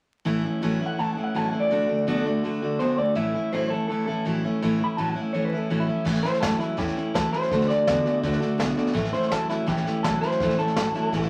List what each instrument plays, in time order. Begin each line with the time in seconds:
0.25 steel-string acoustic guitar A2 E3 A3 C#4 E4, clean electric guitar A2 E3
0.44 clean electric guitar A2 E3, steel-string acoustic guitar A3 C#4 E4
0.61 clean electric guitar A2 F#3, steel-string acoustic guitar A2 E3 A3 C#4 E4
0.80 clean electric guitar A2 E3, steel-string acoustic guitar A3 C#4 E4
0.86 clean electric guitar F#5
0.98 clean electric guitar A2 E3 A5, steel-string acoustic guitar E3 A3 C#4 E4
1.11 clean electric guitar F#5
1.16 clean electric guitar A2 E3, steel-string acoustic guitar A3 C#4 E4
1.24 clean electric guitar F#5
1.34 clean electric guitar A2 F#3 A5, steel-string acoustic guitar A2 E3 A3 C#4 E4
1.48 clean electric guitar A2 F#5
1.53 clean electric guitar E3, steel-string acoustic guitar A3 C#4 E4
1.60 clean electric guitar D5
1.70 steel-string acoustic guitar D3 A3 D4 F#4, clean electric guitar D3 A3
1.88 clean electric guitar D3 A3, steel-string acoustic guitar A3 D4 F#4
2.07 clean electric guitar D3 B3, steel-string acoustic guitar D3 A3 D4 F#4
2.25 clean electric guitar D3 A3, steel-string acoustic guitar A3 D4 F#4
2.43 clean electric guitar D3 A3, steel-string acoustic guitar D3 A3 D4 F#4
2.62 clean electric guitar D3 A3, steel-string acoustic guitar A3 D4 F#4
2.79 clean electric guitar D3 B3 C5, steel-string acoustic guitar D3 A3 D4 F#4
2.98 clean electric guitar D3 A3 D5, steel-string acoustic guitar A3 D4 F#4
3.15 steel-string acoustic guitar A2 E3 A3 C#4 E4, clean electric guitar A2 E3 E5
3.34 clean electric guitar A2 E3, steel-string acoustic guitar A3 C#4 E4
3.52 clean electric guitar A2 F#3 C5, steel-string acoustic guitar A2 E3 A3 C#4 E4
3.70 clean electric guitar A2 E3 A4, steel-string acoustic guitar A3 C#4 E4
3.88 clean electric guitar A2 E3 A4, steel-string acoustic guitar E3 A3 C#4 E4
4.06 clean electric guitar A2 E3 A4, steel-string acoustic guitar A3 C#4 E4
4.25 steel-string acoustic guitar A2 E3 A3 C#4 E4, clean electric guitar A2 F#3
4.43 clean electric guitar A2 E3, steel-string acoustic guitar A3 C#4 E4
4.62 clean electric guitar A2 E3, steel-string acoustic guitar A2 E3 A3 C#4 E4
4.80 clean electric guitar A2 E3 B5, steel-string acoustic guitar A3 C#4 E4
4.97 clean electric guitar A2 F#3 A5, steel-string acoustic guitar A2 E3 A3 C#4 E4
5.09 clean electric guitar F#5
5.15 clean electric guitar A2 E3, steel-string acoustic guitar A3 C#4 E4
5.21 clean electric guitar E5
5.33 clean electric guitar A2 E3 C#5, steel-string acoustic guitar E3 A3 C#4 E4
5.45 clean electric guitar B4
5.52 clean electric guitar A2 E3, steel-string acoustic guitar A3 C#4 E4
5.57 clean electric guitar A4
5.68 clean electric guitar A2 F#3 F#4, steel-string acoustic guitar A2 E3 A3 C#4 E4
5.80 clean electric guitar E4
5.87 clean electric guitar A2 E3, steel-string acoustic guitar A3 C#4 E4
6.04 steel-string acoustic guitar A2 E3 A3 C#4 E4, upright bass A2, clean electric guitar A2 E3, kick, snare, crash
6.15 snare
6.22 clean electric guitar A2 E3 C5, steel-string acoustic guitar A3 C#4 E4, muted upright bass stroke, snare
6.33 snare
6.40 upright bass F#2, clean electric guitar A2 F#3 A4, steel-string acoustic guitar E3 A3 C#4 E4, kick, snare, hi-hat pedal
6.59 clean electric guitar A2 F#3 E4, steel-string acoustic guitar A3 C#4 E4, muted upright bass stroke, snare
6.77 upright bass E2, steel-string acoustic guitar A2 E3 A3 C#4 E4, clean electric guitar A2 E3 G4, kick, snare
6.88 snare
6.96 clean electric guitar A2 E3, steel-string acoustic guitar A3 C#4 E4, muted upright bass stroke, snare
7.14 upright bass C#2, clean electric guitar A2 F#3 A4, steel-string acoustic guitar E3 A3 C#4 E4, kick, snare, hi-hat pedal
7.32 clean electric guitar A2 F#3 C5, steel-string acoustic guitar A3 C#4 E4, muted upright bass stroke, snare
7.43 snare
7.50 upright bass D2, clean electric guitar D3 A3, steel-string acoustic guitar D3 A3 D4 F#4, kick, snare
7.61 snare
7.68 clean electric guitar D3 A3 D5, steel-string acoustic guitar A3 D4 F#4, muted upright bass stroke, snare
7.87 upright bass E2, clean electric guitar D3 B3, steel-string acoustic guitar D3 A3 D4 F#4, kick, snare, hi-hat pedal
8.05 clean electric guitar D3 B3, steel-string acoustic guitar A3 D4 F#4, muted upright bass stroke, snare
8.23 upright bass D2, clean electric guitar D3 A3, steel-string acoustic guitar D3 A3 D4 F#4, kick, snare
8.33 snare
8.40 clean electric guitar D3 A3, steel-string acoustic guitar A3 D4 F#4, muted upright bass stroke, snare
8.58 upright bass B1, steel-string acoustic guitar D3 A3 D4 F#4, clean electric guitar D3 B3, kick, snare, hi-hat pedal
8.77 clean electric guitar D3 B3, steel-string acoustic guitar A3 D4 F#4, muted upright bass stroke, snare
8.87 snare
8.93 upright bass A1, steel-string acoustic guitar A2 E3 A3 C#4 E4, clean electric guitar A2 E3, kick, snare
9.05 snare
9.12 clean electric guitar A2 E3 C5, steel-string acoustic guitar A3 C#4 E4, muted upright bass stroke, snare
9.22 snare
9.30 upright bass G1, clean electric guitar A2 F#3 A4, steel-string acoustic guitar E3 A3 C#4 E4, kick, snare, hi-hat pedal
9.49 clean electric guitar A2 F#3 E4, steel-string acoustic guitar A3 C#4 E4, muted upright bass stroke, snare
9.67 upright bass A1, steel-string acoustic guitar A2 E3 A3 C#4 E4, clean electric guitar A2 E3 G4, kick, snare
9.77 snare
9.85 clean electric guitar A2 E3, steel-string acoustic guitar A3 C#4 E4, muted upright bass stroke, snare
10.03 upright bass B1, clean electric guitar A2 F#3 A4, steel-string acoustic guitar E3 A3 C#4 E4, kick, snare, hi-hat pedal
10.21 clean electric guitar A2 F#3 C5, steel-string acoustic guitar A3 C#4 E4, muted upright bass stroke, snare
10.31 snare
10.40 upright bass C#2, clean electric guitar A2 E3, steel-string acoustic guitar A2 E3 A3 C#4 E4, kick, snare
10.50 snare
10.58 clean electric guitar A2 E3 A4, steel-string acoustic guitar A3 C#4 E4, muted upright bass stroke, snare
10.67 snare
10.76 upright bass A1, clean electric guitar A2 F#3, steel-string acoustic guitar E3 A3 C#4 E4, kick, snare, hi-hat pedal
10.94 clean electric guitar A2 F#3, steel-string acoustic guitar A3 C#4 E4, muted upright bass stroke, snare
11.12 upright bass B1, clean electric guitar A2 E3, steel-string acoustic guitar A2 E3 A3 C#4 E4, kick, snare
11.22 snare